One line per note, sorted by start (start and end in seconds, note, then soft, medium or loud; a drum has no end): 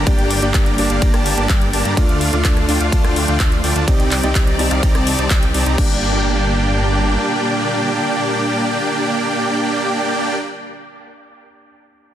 0.00 3.84 D3 medium
0.00 1.94 G3 medium
0.00 0.06 A#3 loud
0.00 1.94 A#3 medium
0.00 0.07 D4 medium
0.00 0.07 G4 medium
0.00 1.93 G4 medium
0.00 0.07 D5 loud
0.06 0.40 G1 loud
0.06 0.39 A#3 medium
0.06 0.40 A#3 loud
0.06 0.39 D4 medium
0.06 0.40 D4 medium
0.06 0.40 G4 medium
0.06 0.40 D5 medium
0.06 0.40 G5 loud
0.06 kick loud
0.06 closed hi-hat medium
0.06 ride medium
0.19 closed hi-hat soft
0.30 open hi-hat loud
0.42 0.52 G1 loud
0.42 0.75 A#3 medium
0.42 0.52 A#3 loud
0.42 0.75 D4 medium
0.42 0.52 D4 medium
0.42 0.52 G4 medium
0.42 0.75 G4 medium
0.42 0.52 D5 medium
0.42 0.76 D5 loud
0.42 0.52 G5 loud
0.42 closed hi-hat soft
0.54 0.76 G1 loud
0.54 0.75 A#3 medium
0.54 0.75 G4 medium
0.54 kick loud
0.54 clap loud
0.54 closed hi-hat medium
0.54 ride medium
0.66 closed hi-hat soft
0.77 0.88 G1 loud
0.77 1.94 A#3 loud
0.77 0.87 A#3 medium
0.77 1.94 D4 medium
0.77 0.87 D4 medium
0.77 0.87 G4 medium
0.77 1.95 G4 medium
0.77 0.87 D5 medium
0.77 1.95 D5 loud
0.77 0.87 A5 loud
0.77 open hi-hat medium
0.90 0.99 G1 loud
0.90 1.00 A#3 medium
0.90 1.00 D4 medium
0.90 1.00 G4 medium
0.90 1.00 D5 medium
0.90 1.00 F5 loud
0.90 closed hi-hat soft
1.02 1.11 G1 loud
1.02 1.11 A#3 loud
1.02 1.11 D4 loud
1.02 1.11 G4 medium
1.02 1.11 D5 medium
1.02 1.11 A#5 loud
1.02 kick loud
1.02 closed hi-hat medium
1.02 ride medium
1.14 1.35 G1 medium
1.14 1.34 A#3 medium
1.14 1.34 D4 medium
1.14 1.34 G4 medium
1.14 1.34 D5 medium
1.14 1.34 A5 medium
1.14 cross-stick medium
1.14 closed hi-hat soft
1.26 open hi-hat loud
1.38 1.47 G1 loud
1.38 1.47 A#3 loud
1.38 1.47 D4 medium
1.38 1.47 G4 medium
1.38 1.47 D5 medium
1.38 1.47 A5 loud
1.38 closed hi-hat soft
1.49 1.71 G2 medium
1.49 kick loud
1.49 clap loud
1.49 closed hi-hat medium
1.49 ride medium
1.62 closed hi-hat soft
1.73 1.83 G1 loud
1.73 1.82 A#3 medium
1.73 1.82 D4 medium
1.73 1.82 G4 medium
1.73 1.82 D5 medium
1.73 1.82 A5 loud
1.73 open hi-hat medium
1.85 1.95 G2 loud
1.85 1.94 A#3 medium
1.85 1.94 D4 medium
1.85 1.94 G4 medium
1.85 1.94 D5 medium
1.85 1.94 A#5 medium
1.85 closed hi-hat soft
1.97 2.31 D2 loud
1.97 3.86 F3 medium
1.97 2.30 A3 medium
1.97 2.30 A3 loud
1.97 3.86 A3 medium
1.97 2.30 D4 medium
1.97 2.30 F4 medium
1.97 3.86 F4 medium
1.97 2.30 D5 medium
1.97 kick loud
1.97 closed hi-hat medium
1.97 ride medium
2.09 closed hi-hat soft
2.21 open hi-hat loud
2.32 2.42 D2 loud
2.32 2.65 A3 loud
2.32 2.42 A3 loud
2.32 2.66 D4 medium
2.32 2.42 D4 medium
2.32 2.42 F4 medium
2.32 2.66 F4 medium
2.32 2.42 D5 medium
2.32 2.66 D5 loud
2.32 2.42 F5 loud
2.32 closed hi-hat soft
2.45 2.66 D2 loud
2.45 2.65 A3 medium
2.45 2.65 D4 medium
2.45 2.65 F4 medium
2.45 2.65 D5 medium
2.45 2.65 A5 medium
2.45 kick loud
2.45 clap loud
2.45 closed hi-hat medium
2.45 ride medium
2.57 cross-stick medium
2.57 closed hi-hat soft
2.67 2.78 D2 loud
2.67 3.84 A3 loud
2.67 2.78 A3 medium
2.67 3.85 D4 medium
2.67 2.78 D4 medium
2.67 2.78 F4 medium
2.67 3.85 F4 medium
2.67 2.78 D5 medium
2.67 3.85 D5 loud
2.67 2.78 G5 loud
2.67 open hi-hat medium
2.80 2.90 D2 loud
2.80 2.91 A3 medium
2.80 2.91 D4 medium
2.80 2.91 F4 medium
2.80 2.91 D5 medium
2.80 2.91 F5 medium
2.80 closed hi-hat soft
2.92 3.02 D2 loud
2.92 3.02 A3 loud
2.92 3.02 D4 medium
2.92 3.02 F4 medium
2.92 3.02 D5 medium
2.92 3.02 A5 loud
2.92 kick loud
2.92 closed hi-hat medium
2.92 ride medium
3.04 3.26 D2 loud
3.04 3.25 A3 medium
3.04 3.25 D4 medium
3.04 3.25 F4 medium
3.04 3.25 D5 medium
3.04 3.25 G5 medium
3.04 cross-stick medium
3.04 closed hi-hat soft
3.16 open hi-hat loud
3.28 3.38 D2 loud
3.28 3.37 A3 loud
3.28 3.37 D4 medium
3.28 3.37 F4 medium
3.28 3.37 D5 medium
3.28 3.37 G5 loud
3.28 closed hi-hat soft
3.40 3.61 D2 medium
3.40 3.55 A3 medium
3.40 3.55 D4 medium
3.40 3.55 F4 medium
3.40 3.55 D5 medium
3.40 kick loud
3.40 clap loud
3.40 closed hi-hat medium
3.40 ride medium
3.52 closed hi-hat soft
3.64 3.73 D2 loud
3.64 3.73 A3 medium
3.64 3.73 D4 medium
3.64 3.73 F4 medium
3.64 3.73 D5 medium
3.64 3.73 G5 loud
3.64 open hi-hat medium
3.76 3.85 D2 loud
3.76 3.85 A3 medium
3.76 3.85 D4 medium
3.76 3.85 F4 medium
3.76 3.85 D5 medium
3.76 3.85 A5 medium
3.76 closed hi-hat soft
3.87 4.21 C2 loud
3.87 5.76 C3 medium
3.87 5.76 D#3 medium
3.87 5.76 G3 medium
3.87 4.20 C4 medium
3.87 4.21 D#4 medium
3.87 4.21 G4 medium
3.87 4.21 D5 medium
3.87 5.76 D5 medium
3.87 4.21 D5 medium
3.87 4.21 G5 loud
3.87 kick loud
3.87 closed hi-hat medium
3.87 ride medium
4.00 closed hi-hat soft
4.11 clap medium
4.11 open hi-hat loud
4.23 4.33 C2 loud
4.23 4.56 C4 medium
4.23 4.33 C4 loud
4.23 4.56 D#4 medium
4.23 4.33 D#4 medium
4.23 4.33 G4 medium
4.23 4.56 G4 medium
4.23 4.33 D5 medium
4.23 4.57 D5 loud
4.23 4.33 G5 loud
4.23 closed hi-hat soft
4.35 4.57 C2 loud
4.35 4.56 G4 medium
4.35 kick loud
4.35 clap loud
4.35 closed hi-hat medium
4.35 ride medium
4.47 closed hi-hat soft
4.58 4.69 C2 loud
4.58 5.75 C4 loud
4.58 4.68 C4 medium
4.58 5.75 D#4 medium
4.58 4.68 D#4 medium
4.58 4.68 G4 medium
4.58 5.75 G4 medium
4.58 4.68 D5 medium
4.58 5.76 D5 loud
4.58 4.68 A5 medium
4.58 open hi-hat medium
4.71 4.81 C2 loud
4.71 4.81 C4 medium
4.71 4.81 D#4 medium
4.71 4.81 G4 medium
4.71 4.81 D5 medium
4.71 4.81 F5 loud
4.71 closed hi-hat soft
4.83 4.92 C2 loud
4.83 4.92 C4 loud
4.83 4.92 D#4 medium
4.83 4.92 G4 medium
4.83 4.92 D5 medium
4.83 4.92 A#5 loud
4.83 kick loud
4.83 closed hi-hat medium
4.83 ride medium
4.95 5.16 C2 loud
4.95 5.15 C4 medium
4.95 5.15 D#4 medium
4.95 5.15 G4 medium
4.95 5.15 D5 medium
4.95 5.15 A5 medium
4.95 cross-stick medium
4.95 closed hi-hat soft
5.07 open hi-hat loud
5.18 5.28 C2 loud
5.18 5.28 C4 loud
5.18 5.28 D#4 medium
5.18 5.28 G4 medium
5.18 5.28 D5 medium
5.18 5.28 A5 loud
5.18 closed hi-hat soft
5.30 5.52 C2 medium
5.30 kick loud
5.30 clap loud
5.30 closed hi-hat medium
5.30 ride medium
5.43 closed hi-hat soft
5.54 5.64 C2 loud
5.54 5.64 C4 medium
5.54 5.64 D#4 medium
5.54 5.64 G4 medium
5.54 5.64 D5 medium
5.54 5.64 A5 loud
5.54 open hi-hat medium
5.66 5.76 C2 loud
5.66 5.75 C4 medium
5.66 5.75 D#4 medium
5.66 5.75 G4 medium
5.66 5.75 D5 medium
5.66 5.75 A#5 medium
5.66 closed hi-hat soft
5.76 7.17 G1 loud
5.76 10.35 A#2 medium
5.76 10.35 D3 medium
5.76 10.35 G3 medium
5.76 10.66 A#3 medium
5.76 10.35 A#3 medium
5.76 10.67 D4 medium
5.76 10.35 D4 medium
5.76 10.68 G4 medium
5.76 10.69 D5 medium
5.76 kick loud
5.76 crash medium